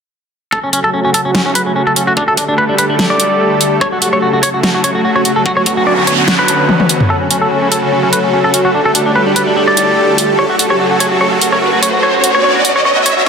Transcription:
0.52 C#3 F#3 A3 F#4 A4, kick
0.64 C#4
0.73 C#4, closed hi-hat
0.79 C#5
0.84 A4
0.94 C#4
1.05 C#4 A5
1.14 A4, kick, closed hi-hat
1.25 C#4
1.35 C#4, snare
1.46 C#4
1.55 B4, closed hi-hat
1.66 C#4
1.76 C#4
1.87 A4
1.96 C#4, closed hi-hat
2.07 F#4
2.17 D3 G3 D4 G4, kick
2.28 A4
2.35 D4 D5, kick, closed hi-hat
2.48 D4
2.58 B4
2.69 D4
2.78 B4, closed hi-hat
2.90 D4
2.99 D4, snare
3.10 D5
3.20 closed hi-hat
3.61 closed hi-hat
3.81 C#3 F#3 A3 F#4 C#5, kick
3.92 F#4
4.02 F#4, closed hi-hat
4.13 F#4 C#5
4.22 F#4
4.33 F#4
4.43 C#5, kick, closed hi-hat
4.47 C#5
4.54 F#4
4.63 F#4, snare
4.75 F#4
4.84 C#5, closed hi-hat
4.95 F#4
5.05 F#4
5.16 C#5
5.25 F#4, closed hi-hat
5.36 A4
5.46 D3 B3 C#4 F#4, kick, noise sweep
5.57 C#5
5.66 F#4, kick, closed hi-hat
5.77 F#4
5.87 D5
5.98 F#4
6.07 C#5, closed hi-hat
6.18 F#4 B5
6.28 F#4, snare
6.39 B4
6.48 closed hi-hat
6.69 high tom
6.80 high tom
6.89 closed hi-hat
7.00 mid tom
7.10 C#3 F#3 A3 F#4 A4, riser
7.21 C#4
7.31 C#4, closed hi-hat
7.42 A4
7.51 C#4
7.62 C#4
7.72 A4, closed hi-hat
7.83 C#4 A5
7.92 C#4
8.03 C#4
8.13 B4, closed hi-hat
8.24 C#4
8.33 C#4
8.44 A4
8.54 C#4, closed hi-hat
8.65 F#4
8.74 D3 G3 D4 G4 A4
8.85 A4
8.95 D4, closed hi-hat
9.04 D4 D5
9.15 B4
9.26 D4
9.36 B4, closed hi-hat
9.47 D4
9.56 D4
9.68 D5
9.77 closed hi-hat
10.18 closed hi-hat
10.39 C#3 F#3 A3 F#4 C#5
10.50 F#4
10.59 F#4, closed hi-hat
10.67 F#4 C#5
10.80 F#4
10.91 F#4
11.00 C#5, closed hi-hat
11.09 F#4 C#5
11.21 C#5
11.32 F#4
11.41 F#4, closed hi-hat
11.52 C#5
11.62 F#4
11.73 F#4
11.82 C#5, closed hi-hat
11.94 F#4
12.03 D3 B3 C#4 F#4 C#5
12.14 F#4
12.23 F#4 B5, closed hi-hat
12.35 C#5
12.44 C#5
12.55 F#4
12.65 F#4, closed hi-hat
12.76 C#5
12.85 C#5
12.96 F#4
13.06 C#5, closed hi-hat
13.17 F#4

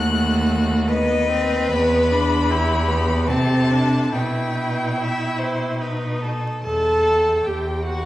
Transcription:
Already playing: D#2 A3 F#4 F#6
0.12 F#4
0.88 B3 B4 D#5
1.30 C4
1.71 E2 B3 B5
2.11 D4
2.51 E4 G4
2.88 B3
3.27 C3 C4 A4 A5
3.70 D4
4.12 B2 E4 B4 G5
4.99 E5
5.39 C5
5.81 D#4 B4
6.22 A4
6.63 E2 A4 A5
7.06 G5
7.44 E2 G4 G5
7.83 F#4 F#5 G5

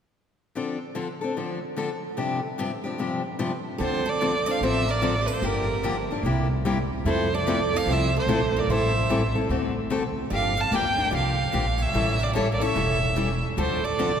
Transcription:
0.55 D3 F3 C4 D4 A4
0.95 D3 F3 C4 D4 A4
1.21 C4 D4 A4
1.37 D3 F3 C4 D4 A4
1.76 D3 F3 C4 D4 A4
2.17 G2 C3 F3 C4 D4 G4
2.58 G2 C3 F3 C4 D4 G4
2.84 F3 C4 D4 G4
2.98 G2 C3 F3 C4 D4 G4
3.39 G2 C3 F3 C4 D4 G4
3.78 D2 D3 F3 C4 D4 A4
3.83 C5
4.06 A4 D5
4.21 D3 F3 C4 D4 A4
4.46 C4 D4 A4 D5
4.51 F5
4.61 A1 D3 F3 C4 D4 A4 C5
4.67 E5
4.88 A#4 D5
5.02 D3 F3 C4 D4 A4
5.21 G4
5.26 A4 B4
5.33 C5
5.42 G1 D3 F3 A#3 D4 G4 A#4
5.83 D3 F3 A#3 D4 G4
6.11 A#3 D4 G4
6.23 C2 C3 G3 A#3 E4 G4
6.65 C3 G3 A#3 E4 G4
7.05 F2 F3 A3 C4 E4 A4 C5
7.34 A4 D5
7.47 F3 A3 C4 E4 A4
7.73 C4 E4 A4 D5 F5
7.85 C2 F3 A3 C4 E4 A4
7.90 C5 E5
8.17 A4 C5
8.26 A#1 F3 A3 C4 E4 A4
8.57 A#4 D5
8.67 A1 E3 G3 C4 E4 A4 C5
8.74 E5
9.09 E3 G3 C4 E4 A4
9.35 C4 E4 A4
9.49 D2 D3 A3 C4 F#4 A4
9.90 D3 A3 C4 F#4 A4
10.30 G1 D3 F3 A#3 D4 G4 D5 F5
10.57 F5 A5
10.71 D2 D3 F3 A#3 D4 G4 D5 G5
10.96 A#3 D4 G4
11.11 C2 D3 F3 A#3 D4 G4 D5
11.16 F5
11.52 A#1 D3 F3 A#3 D4 G4
11.78 C#5
11.82 E5
11.93 A1 E3 G3 C#4 E4 A4
12.19 A#4
12.23 D5
12.33 E3 G3 C#4 E4 A4 C#5
12.52 A#4 D5
12.60 C#4 E4 A4 C#5 E5
12.75 E1 E3 G3 C#4 E4 A4
13.16 E3 G3 C#4 E4 A4
13.57 D2 D3 F3 C4 D4 A4 C5
13.84 A4 D5
13.99 D3 F3 C4 D4 A4

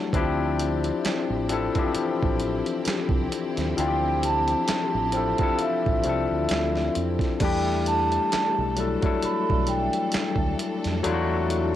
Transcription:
Already playing: F#3 A3 D4 E4 A4
0.13 D2 E3 F3 C4 D4 E4 G4, kick, closed hi-hat
0.17 F3 G4
0.60 closed hi-hat
0.84 closed hi-hat
1.05 muted fingered electric bass stroke, snare, clap, closed hi-hat
1.30 A1
1.49 F3 C4 D4 E4, closed hi-hat
1.53 A4
1.75 E3 C4 D4 E4, kick, closed hi-hat
1.79 F3 G4
1.95 muted fingered electric bass stroke, closed hi-hat
2.23 A1, kick
2.40 closed hi-hat
2.66 closed hi-hat
2.85 muted fingered electric bass stroke, snare, clap, closed hi-hat
3.09 C2, kick
3.32 closed hi-hat
3.57 D#2, snare, closed hi-hat
3.77 D2 F3 C4 D4 E4 G5, closed hi-hat
3.81 F4
3.88 G4
4.23 A5, closed hi-hat
4.48 closed hi-hat
4.68 muted fingered electric bass stroke, snare, clap, closed hi-hat
4.95 A1
5.12 F3 C4 D4 E4, closed hi-hat
5.17 A4
5.38 F3 C4 D4 E4, kick, closed hi-hat
5.43 A4
5.56 F5, closed hi-hat
5.61 E5
5.86 A1, kick
6.04 C2 F3 C4 D4, closed hi-hat
6.08 E4 A4
6.31 D2
6.49 D2, snare, clap, closed hi-hat
6.75 snare
6.95 F2, closed hi-hat
7.19 kick, snare, closed hi-hat
7.40 E2 E3 G3 A3 D4 E4 A4 G5, kick, closed hi-hat, crash
7.45 G4
7.86 A5, closed hi-hat
8.12 closed hi-hat
8.32 muted fingered electric bass stroke, snare, clap, closed hi-hat
8.58 B1
8.76 F#3 A3 D4 E4, closed hi-hat
8.80 A4
9.01 F#3 A3 D4 E4, kick, closed hi-hat
9.06 A4
9.22 B5, muted fingered electric bass stroke, closed hi-hat
9.50 B1, kick
9.67 G5, closed hi-hat
9.93 closed hi-hat
10.12 muted fingered electric bass stroke, snare, clap, closed hi-hat
10.36 D2, kick
10.59 closed hi-hat
10.84 F2, snare, closed hi-hat
11.03 E2 F#3 A3 D4 E4, closed hi-hat
11.07 F4
11.14 F#4
11.50 closed hi-hat

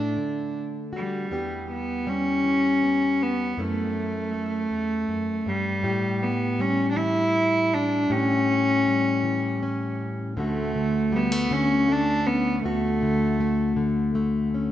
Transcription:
Already playing: A2 A3 D4
0.16 D3
0.93 G3 F#4
1.30 E2 E3 G3 B3 G4
1.72 B3
2.07 G3 C#4
2.44 E3
2.83 B3
3.22 B3
3.57 F#2 A3 C#4 E4
4.34 A3
4.71 E2
5.08 F#2
5.46 G2 G3
5.83 A2 G4
6.23 B3
6.59 G3 C#4
6.91 D4
6.97 E3 E4
7.74 D4
8.10 A2 C#4 G4
8.88 G3
9.24 E3
9.63 C#4
10.36 D2 D3 A3 F#4
10.41 A3
10.76 D3
11.12 G3 B3
11.32 A3
11.51 D3 C#4
11.88 A3 D4
12.27 B3 C#4
12.64 D2 A3 F#4
13.02 D3
13.40 A3
13.76 D3
14.15 A3
14.54 C#4

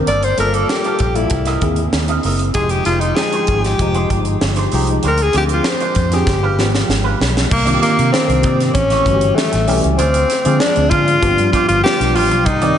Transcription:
0.06 G1 A#3 F4 A4 D5, closed hi-hat
0.23 C5, muted clean electric guitar stroke, closed hi-hat
0.37 G1 G3 A#3 F4 A4 A#4 E5, snare, closed hi-hat
0.54 A#3 F4 A4 D5, closed hi-hat
0.69 G4, muted clean electric guitar stroke, snare
0.84 A#3 F4 A4 D5, closed hi-hat
0.99 A#1, muted clean electric guitar stroke, kick, closed hi-hat
1.15 G3 A#3 E4 F4 A4, muted clean electric guitar stroke, closed hi-hat
1.30 C2, muted clean electric guitar stroke, kick, closed hi-hat
1.45 C4 E4 A#4 D#5, snare, closed hi-hat
1.61 D#2 A#3 C4 E4 G#4, muted clean electric guitar stroke, kick, closed hi-hat
1.76 muted clean electric guitar stroke, closed hi-hat
1.93 D#2, muted clean electric guitar stroke, snare
2.08 C4 E4 A#4 D#5, closed hi-hat
2.23 F#1 C4 E4 A#4 D#5, open hi-hat
2.39 muted clean electric guitar stroke, closed hi-hat
2.54 F1 F3 G#3 D#4 G4 G#4 C5, kick, closed hi-hat
2.69 G4, muted clean electric guitar stroke, closed hi-hat
2.85 F1 G#3 D#4 F4 G4 C5, snare, closed hi-hat
3.00 G#3 D#4 G4 C5, closed hi-hat
3.16 F3 G#3 D#4 G#4 G5, muted clean electric guitar stroke, snare
3.32 G#3 D#4 G4 C5, closed hi-hat
3.47 G#1, muted clean electric guitar stroke, kick, closed hi-hat
3.64 G4, muted clean electric guitar stroke, snare, closed hi-hat
3.79 F1 F3 G#3 D#4 G4, muted clean electric guitar stroke, kick, closed hi-hat
3.95 G#3 D#4 G4 C5, closed hi-hat
4.10 G1, muted clean electric guitar stroke, kick, closed hi-hat
4.25 muted clean electric guitar stroke, closed hi-hat
4.41 G1, muted clean electric guitar stroke, snare
4.56 G#3 D#4 G4 C5, snare, closed hi-hat
4.72 C2 F3 G#3 D#4 G4 C5, open hi-hat
4.87 muted clean electric guitar stroke, closed hi-hat
5.03 D2 G#3 D4 F4 C5, closed hi-hat
5.08 A#4
5.18 muted clean electric guitar stroke, closed hi-hat
5.23 G#4
5.33 D2 F3 G#3 C4 D4 F4 G#4 D5, snare, closed hi-hat
5.38 G4
5.49 G#3 D4 F4 C5, closed hi-hat
5.53 F4
5.64 snare
5.69 C5
5.80 G#3 D4 F4 C5, closed hi-hat
5.95 F2, muted clean electric guitar stroke, kick, closed hi-hat
6.11 F3 C4 D4 G4 G#4, muted clean electric guitar stroke, snare, closed hi-hat
6.27 G1, muted clean electric guitar stroke, kick, snare
6.43 G#3 D4 F4 B4
6.58 G#1 F3 G#3 B3 G4, muted clean electric guitar stroke, snare
6.74 muted clean electric guitar stroke, snare
6.89 G#1, muted clean electric guitar stroke, snare
7.04 G#3 D4 F4 B4
7.19 B1, muted clean electric guitar stroke, snare
7.35 muted clean electric guitar stroke, snare
7.50 C2 A#3, muted clean electric guitar stroke, kick, crash
7.65 D#3 A#3 C4 D4 D#4 F4 G4 D5, closed hi-hat
7.74 G4
7.80 A#3 D#4 G4 D5, snare, closed hi-hat
7.97 C3, muted clean electric guitar stroke, closed hi-hat
8.13 C4, muted clean electric guitar stroke, snare
8.27 C2 D#3 A#3 C4 D4 G4, muted clean electric guitar stroke, closed hi-hat
8.43 C3 A#3 D#4 G4 D5, kick, closed hi-hat
8.59 muted clean electric guitar stroke, snare, closed hi-hat
8.74 A1 C#4, muted clean electric guitar stroke, kick, closed hi-hat
8.90 A3 E4 G4 C#5, snare, closed hi-hat
9.05 G1 E3 G3 A3 C#4 F#4, muted clean electric guitar stroke, kick, closed hi-hat
9.13 G4
9.20 muted clean electric guitar stroke, closed hi-hat
9.35 A3, muted clean electric guitar stroke, snare
9.51 A1, muted clean electric guitar stroke, snare, closed hi-hat
9.67 B1 E3 G3 A3 C#4 G4, open hi-hat
9.83 C#2, muted clean electric guitar stroke, closed hi-hat
9.98 D2 C4 F4 G#4 D5, closed hi-hat
10.14 closed hi-hat
10.30 muted clean electric guitar stroke, snare, closed hi-hat
10.44 D3 F3 G#3 C4 D4 F4 G#4 D5, closed hi-hat
10.60 D4, snare
10.76 D2, muted clean electric guitar stroke, closed hi-hat
10.90 D3 C4 F4 G#4 F5, kick, closed hi-hat
11.07 muted clean electric guitar stroke, closed hi-hat
11.22 G1 F3 G3 B3 D4 G4, kick, closed hi-hat
11.38 G2, muted clean electric guitar stroke, closed hi-hat
11.53 B3 F4 G4 D5, kick, closed hi-hat
11.68 G1 F4, muted clean electric guitar stroke, closed hi-hat
11.84 F3 G3 B3 D4 G4, snare
11.99 B1, muted clean electric guitar stroke, snare, closed hi-hat
12.15 A1 B3 F4 G4 D5, open hi-hat
12.31 B1, muted clean electric guitar stroke, closed hi-hat
12.46 C2 D#4, muted clean electric guitar stroke, kick, closed hi-hat
12.61 D#3 A#3 C4 D#4 G4 D5, closed hi-hat

